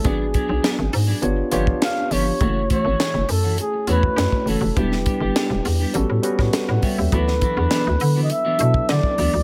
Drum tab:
HH |x-x-x-o-x-x-x-o-|x-x-x-o-x-x-x-o-|x-x-x-o-x-x-x-o-|x-x-x-o-x-x-x-o-|
SD |----o-------o---|----o-------o---|-o--o------oo---|-o--o-------o---|
BD |o-o--------o----|o-o--------o-o--|o-o--------o--o-|o-o--------o-o--|